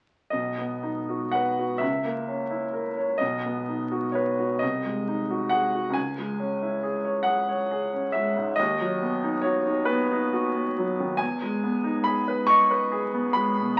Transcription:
grand piano
0.30 B1 D#5
0.58 B3
0.83 D#4
1.09 F#4
1.31 B4 F#5
1.59 F#4
1.78 C#2 E5
2.04 A#3
2.28 C#4
2.51 E4
2.73 A#4
2.97 C#5
3.18 B1 D#5
3.45 B3
3.68 D#4
3.91 F#4
4.12 B4 C#5
4.39 F#4
4.59 C2 D#5
4.85 G#3
5.08 D#4
5.30 F#4
5.49 G#4 F#5
5.75 F#4
5.90 C#2 G#5
6.18 G#3
6.40 C#4
6.62 E4
6.83 G#4
7.05 C#5
7.23 G#4 F#5
7.49 C#5
7.71 G#4
7.93 C#4
8.12 G#3 E5
8.37 G#2
8.56 D#2 D#5
8.80 F#3
9.02 B3
9.23 D#4
9.42 F#4 C#5
9.66 D#4
9.85 B3 B4
10.11 D#4
10.33 F#4
10.55 B3
10.78 F#3
11.00 D#3
11.17 E2 G#5
11.42 G#3
11.63 B3
11.84 D#4
12.04 G#4 B5
12.28 B4
12.47 D#5 C#6
12.71 B4
12.92 G#4
13.14 B3
13.33 G#3 B5
13.58 B2

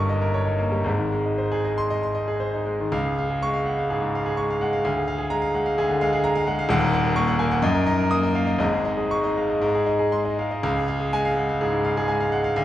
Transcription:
grand piano
Already playing: G1 G2 G3 A#3 D#4 A#4 C#5 D#5 C#6
0.09 D#5
0.22 A#4
0.34 C#5
0.46 D#4
0.58 A#3
0.72 G3
0.84 G#1 G#2
0.98 D#3
1.12 G#3
1.25 D#4
1.38 C5
1.52 G#4
1.65 D#5
1.78 C6
1.90 D#5
2.03 C6
2.15 D#5
2.28 G#4
2.40 C5
2.54 D#4
2.65 G#3
2.80 D#3
2.92 C#2 F5
3.05 G#4
3.18 F5
3.30 G#4
3.42 G#3 C#6
3.54 F5
3.66 G#3 F#5
3.79 F5
3.90 G#2 G#4
4.02 G#2
4.15 F5
4.26 G#4
4.37 G#3 C#6
4.50 F5
4.61 G#3 F#5
4.73 F5
4.85 D2 F5
4.97 G#4
5.08 F5
5.18 G#4
5.30 G#3 A#5
5.42 F5
5.54 G#3 F#5
5.66 F5
5.78 D2 G#4
5.89 D3
6.01 G#3 F5
6.13 G#4
6.24 G#3 A#5
6.35 F5
6.47 G#3 F#5
6.59 F5
6.69 D#1 D#2 F#5
6.82 A#4
6.94 F#5
7.05 A#4
7.16 A#3 C#6
7.28 F#5
7.39 A#3 G#5
7.51 F#5
7.62 F#2 D#5
7.75 A#4
7.86 D#4 D#5
7.98 A#4
8.11 A#3 D#6
8.23 D#4 D#5
8.35 A#3 F5
8.47 D#5
8.58 G#1 G#2 D#5
8.73 G#4
8.85 D#4 D#5
8.97 G#4
9.11 G#3 C#6
9.24 D#4 D#5
9.37 G#3 F5
9.50 D#5
9.61 G#2 D#5
9.75 G#4
9.86 D#4 D#5
9.99 G#4
10.12 G#3 C6
10.25 D#4 D#5
10.39 G#3 F5
10.51 D#5
10.63 C#2 F5
10.76 G#4
10.88 F5
11.00 G#4
11.13 G#3 G#5
11.25 F5
11.37 G#3 F#5
11.49 F5
11.61 G#2 G#4
11.73 G#2
11.85 F5
11.97 G#4
12.08 G#3 G#5
12.20 F5
12.32 G#3 F#5
12.44 F5
12.56 D2 F5

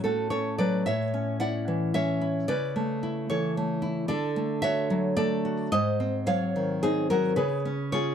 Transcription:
nylon-string guitar
Already playing: A2 C#4
0.04 A3 F#4 A4
0.30 C#4 A4 C#5
0.58 F#3 B4 D5
0.86 A2 C#5 E5
1.14 C#4
1.40 E4 D5 F#5
1.68 E3
1.94 C#4 C#5 E5
2.21 E4
2.48 C#3 B4 D5
2.76 A3
3.03 E4
3.30 E3 A4 C#5
3.57 A3
3.82 E4
4.08 D3 A4 D5
4.36 A3
4.62 F#4 C#5 E5
4.90 F#3
5.17 A3 A4 D5
5.45 F#4
5.72 G#2 C5 D#5
6.00 C4
6.26 F#3 C#5 F5
6.56 D#3
6.83 C4 D#4 G#4
7.10 F#3 F#4 A#4
7.36 C#3 G#4 B4
7.65 C#4
7.92 F4 G#4 C#5

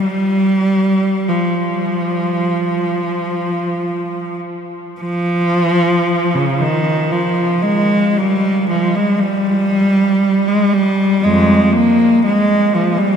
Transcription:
cello
0.05 G3
1.28 F3
5.01 F3
6.35 C#3
6.60 D#3
7.11 F3
7.62 G#3
8.18 G3
8.69 F3
8.95 G#3
9.20 G3
10.47 G#3
10.73 G3
11.23 F2 G#3
11.73 A#3
12.25 G#3
12.75 F3
12.98 G3

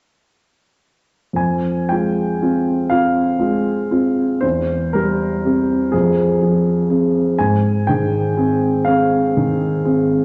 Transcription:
grand piano
1.33 F2 G#5
1.89 G#3 F4 G5
2.42 C4 F4
2.90 C4 F4 F5
3.39 G#3 F4
3.91 C4 F4
4.41 E2 C5
4.93 G3 G4 A#4
5.45 C4 G4
5.92 F2 G#4
6.42 F3 G#4
6.90 C4 G#4
7.39 G#2 G#5
7.87 D#3 G#4 G5
8.37 C4 G#4
8.85 C4 G#4 F5
9.37 D#3 G#4
9.85 C4 G#4

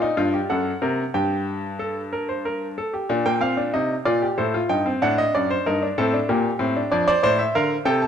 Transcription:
grand piano
Already playing: D5
0.02 D#4
0.17 G2 F4
0.34 G4
0.50 F#2 A4 F#5
0.82 C3 A#4
1.14 G2 G4 G5
1.79 A4
2.13 A#4
2.29 C5
2.45 A#4
2.78 A4
2.93 G4
3.09 A#2 D4
3.26 A#3 G5
3.41 C4 F5
3.57 D4
3.74 C3 D#4 D#5
4.05 A#2 F4 D5
4.22 G4
4.38 A2 A4 C5
4.54 F4
4.69 G2 D#4 G5
4.86 C4
5.02 A2 D4 F#5
5.18 D#5
5.35 F#2 D5
5.51 C5
5.66 G2 D#4 A#4
5.82 D4
5.98 A2 C4 A4
6.14 D4
6.29 A#2 A#3 G4
6.59 A2 C4
6.76 D4
6.92 F2 D4 D5
7.07 C5 D5
7.23 A2 C5 D5
7.39 E5
7.55 D3 A#4 F5
7.85 C3 A4 G5
8.02 A5

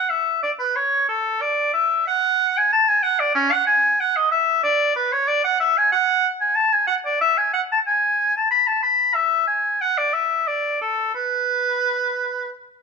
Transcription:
oboe
Already playing: F#5
0.10 E5
0.43 D5
0.59 B4
0.76 C#5
1.09 A4
1.41 D5
1.74 E5
2.07 F#5
2.57 G#5
2.72 A5
2.89 G#5
3.03 F#5
3.20 D5
3.35 C#4
3.52 F#5
3.67 G#5
4.00 F#5
4.16 D#5
4.31 E5
4.63 D5
4.96 B4
5.12 C#5
5.28 D5
5.44 F#5
5.60 E5
5.78 G#5
5.92 F#5
6.41 G#5
6.56 A5
6.73 G#5
6.87 F#5
7.05 D5
7.21 E5
7.38 G#5
7.53 F#5
7.72 A5
7.87 G#5
8.37 A5
8.51 B5
8.67 A5
8.83 B5
9.15 E5
9.47 G#5
9.81 F#5
9.98 D5
10.14 E5
10.47 D5
10.81 A4
11.15 B4

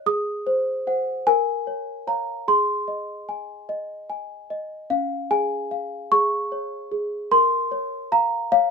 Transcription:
celesta
0.06 G#4 D#6
0.47 C5
0.87 C5 F#5
1.27 A#4 G#5
1.67 C#5
2.07 C#5 F5 A#5
2.48 G#4 C6
2.88 D#5
3.29 G#5
3.69 D#5
4.10 G#5
4.50 D#5
4.90 C#4 F5
5.31 G#4 G#5
5.71 F5
6.12 G#4 C#6
6.52 C#5
6.92 G#4
7.31 A#4 C6
7.71 C#5
8.12 F5 A#5
8.52 C#5 F5

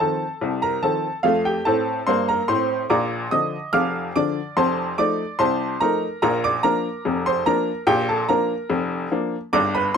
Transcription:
upright piano
0.00 D#3 F3 C4 A4 A5
0.41 C2 C3
0.62 A#4 A#5
0.83 D#3 F3 C4 A4 A5
1.23 F2 A3 F4 F5
1.45 G4 G5
1.65 A2 C4 A4 A5
2.07 G2 A#3 C5 C6
2.28 A#4 A#5
2.48 A2 C4 C5 C6
2.90 A#1 A#2 D5 A#5 D6
3.31 D3 F3 D4 D#5 D#6
3.73 F1 F2 F5 D6 F6
4.16 D3 F3 D4 D5 D6
4.57 F1 F2 C5 A5 C6
4.98 F3 A3 D#4 D5 D6
5.39 C2 C3 C5 A5 C6
5.80 F3 A3 D#4 A#4 A#5
6.22 A#1 A#2 A#4 A#5
6.44 D5 D6
6.63 F3 A#3 D4 A#4 A#5
7.05 F1 F2
7.26 C5 C6
7.46 F3 A#3 D4 A#4 A#5
7.87 A#1 A#2 G4 G5
8.09 A4 A5
8.29 F3 A#3 D4 A#4 A#5
8.70 F1 F2
9.11 F3 A#3 D4
9.53 G1 G2 D5 D6
9.75 B4 B5

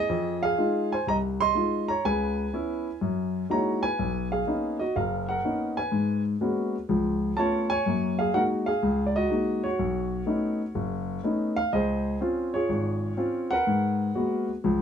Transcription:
grand piano
Already playing: G#4 D#5
0.09 F2
0.43 G#4 F5
0.58 G#3 D#4 F4
0.92 C5 G#5
1.07 C2 D#5 A#5
1.41 D#5 C6
1.55 G#3 D#4 F4
1.88 C#5 A#5
2.05 C#2 C#3 B4 G#5
2.54 B3 C#4 E4
3.01 F#2
3.50 G#3 A#3 D#4 E4 F#4 C#5 A#5
3.83 B4 G#5
3.99 B1
4.32 G#4 F5
4.47 A#3 B3 C#4 D#4
4.79 F#4 D#5
4.96 F#1 A#4 F5
5.29 A#4 F#5
5.44 A#3 B3 C#4 D#4
5.77 B4 G#5
5.92 G#2
6.41 G#3 A#3 B3 C#4 F#4
6.89 C#2 F3
7.37 A3 B3 C#4 F4 C#5 A5
7.70 C#5 G#5
7.86 F#2 A#3
8.19 G#4 F5
8.34 G#3 A#3 D#4 F#4 A#4 F#5
8.66 G#4 F5
8.83 C#2
9.06 D5
9.16 F#4 D#5
9.30 G#3 A#3 D#4 F#4
9.64 F#4 C#5
9.79 B1
10.26 A3 B3 C#4 D#4
10.75 F#1
11.24 A3 B3 C#4 D#4
11.56 F5
11.73 C#2 G#4 C5 D#5
12.21 C4 C#4 F4
12.54 F4 G#4 C#5
12.69 G#1
13.17 C4 C#4 F4
13.51 A#4 B4 F#5
13.67 G#2
14.15 G#3 A#3 B3 F#4
14.64 C#2 F3

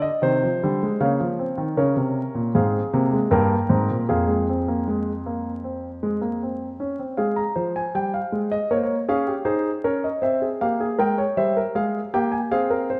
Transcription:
grand piano
0.02 D#5
0.22 C3 D#3 C5
0.43 F3
0.63 D3 G3
0.83 G#3
1.00 C#3 A#3 C#5 F5
1.20 F3
1.39 C4
1.58 D#3
1.77 C#3 C#4 A#4 C#5
1.96 C3
2.35 A#2
2.55 G#2 C4 G#4 F5
2.93 C3 A#3
3.13 G#3
3.31 G2 A#3 A#4 G5
3.69 G#2 C4
3.90 A#2
4.09 F2 A#3 G#4 F5
4.28 G#3
4.49 C4
4.68 A#3
4.88 G#3
5.26 A#3
5.64 C4
6.03 G#3
6.21 A#3
6.43 C4
6.80 C#4
6.99 C4
7.17 G#3 G#4 F5
7.36 A#5
7.56 F3 C5
7.76 G#5
7.95 G3 G5
8.14 F5
8.32 G#3
8.52 D#5
8.71 A#3 A#4 C#5
8.83 C#5
9.09 C#4 G#4 F5
9.27 G4
9.45 D#4 G#4 C5
9.84 C#4 A#4 C#5
10.04 D#5
10.22 C4 C5 E5
10.42 G#4
10.61 A#3 G4 F5
10.80 G#4
10.99 G#3 A#4 G5
11.18 C#5
11.37 G3 C5 E5
11.57 A#4
11.75 G#3 G#4 F5
12.14 A#3 G4 G5
12.32 G#5
12.51 C4 G#4 F5
12.70 A#4
12.90 C5

